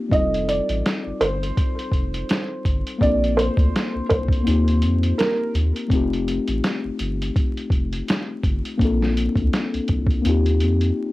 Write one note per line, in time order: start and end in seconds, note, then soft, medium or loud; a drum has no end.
0.00 0.13 A#3 medium
0.00 0.11 C4 medium
0.00 0.13 D#4 medium
0.00 0.11 F4 medium
0.00 0.12 G4 medium
0.09 0.60 F1 loud
0.09 2.96 G3 medium
0.09 2.97 C4 soft
0.09 2.98 D#4 soft
0.09 0.44 D#5 medium
0.09 kick medium
0.09 closed hi-hat medium
0.15 2.98 F4 soft
0.15 2.99 A4 medium
0.34 closed hi-hat soft
0.48 1.16 D5 medium
0.48 closed hi-hat medium
0.69 0.82 A1 medium
0.69 closed hi-hat soft
0.86 snare loud
0.86 closed hi-hat medium
1.06 1.12 G1 medium
1.21 1.51 G1 loud
1.21 2.97 C5 medium
1.21 closed hi-hat medium
1.43 closed hi-hat soft
1.57 kick medium
1.57 closed hi-hat medium
1.79 closed hi-hat soft
1.92 2.23 F1 medium
1.92 kick medium
1.92 closed hi-hat medium
2.14 closed hi-hat soft
2.29 snare loud
2.29 closed hi-hat medium
2.65 2.83 G1 medium
2.65 kick medium
2.65 closed hi-hat medium
2.87 closed hi-hat medium
2.98 3.49 A#1 loud
2.98 4.41 A#3 medium
2.98 4.42 C4 soft
2.98 3.34 D5 medium
2.98 kick medium
3.02 4.43 D4 medium
3.02 4.44 F4 soft
3.02 4.45 A4 medium
3.02 closed hi-hat medium
3.24 closed hi-hat soft
3.37 4.05 C5 medium
3.37 closed hi-hat medium
3.57 3.71 D2 medium
3.57 kick medium
3.57 closed hi-hat soft
3.76 snare medium
3.76 closed hi-hat medium
3.95 4.01 C2 soft
4.09 4.41 C2 medium
4.09 5.18 C5 medium
4.09 kick medium
4.09 closed hi-hat medium
4.28 kick medium
4.32 closed hi-hat soft
4.43 5.86 A#3 medium
4.43 5.87 C4 medium
4.43 5.87 D#4 medium
4.47 4.84 D#2 loud
4.47 5.88 F4 medium
4.47 5.89 G4 medium
4.47 closed hi-hat medium
4.68 closed hi-hat soft
4.82 5.13 F2 medium
4.82 closed hi-hat medium
5.03 closed hi-hat soft
5.18 5.51 A#4 medium
5.18 snare loud
5.18 closed hi-hat medium
5.55 5.72 D#2 medium
5.55 closed hi-hat medium
5.76 closed hi-hat soft
5.88 6.39 F1 loud
5.88 8.74 A3 medium
5.88 8.75 C4 medium
5.88 kick medium
5.88 closed hi-hat medium
5.92 8.76 D#4 medium
5.92 8.77 F4 medium
5.92 8.78 G4 medium
6.13 closed hi-hat soft
6.28 closed hi-hat medium
6.48 6.61 A1 medium
6.48 closed hi-hat soft
6.64 snare medium
6.64 closed hi-hat medium
6.85 6.90 G1 soft
6.99 7.30 G1 medium
6.99 closed hi-hat medium
7.22 closed hi-hat soft
7.36 kick loud
7.36 closed hi-hat medium
7.57 closed hi-hat soft
7.70 8.02 F1 medium
7.70 kick medium
7.70 closed hi-hat medium
7.93 closed hi-hat soft
8.08 snare loud
8.08 closed hi-hat medium
8.44 8.61 G1 medium
8.44 kick medium
8.44 closed hi-hat medium
8.65 closed hi-hat medium
8.78 9.28 A#1 loud
8.78 10.20 A#3 medium
8.78 10.21 C4 medium
8.78 10.22 D4 medium
8.78 kick medium
8.78 closed hi-hat medium
8.82 10.23 F4 medium
8.82 10.24 A4 medium
9.02 snare soft
9.17 closed hi-hat medium
9.35 9.49 D2 medium
9.35 kick medium
9.35 closed hi-hat soft
9.53 snare medium
9.53 closed hi-hat medium
9.74 9.80 C2 soft
9.74 closed hi-hat soft
9.88 10.19 C2 medium
9.88 kick medium
9.88 closed hi-hat medium
10.07 kick medium
10.07 closed hi-hat soft
10.22 10.63 D#2 loud
10.22 11.12 A#3 medium
10.22 11.12 C4 medium
10.22 11.12 D#4 medium
10.22 closed hi-hat medium
10.27 11.12 F4 medium
10.27 11.12 G4 medium
10.46 closed hi-hat soft
10.60 10.91 F2 medium
10.60 closed hi-hat medium
10.81 closed hi-hat soft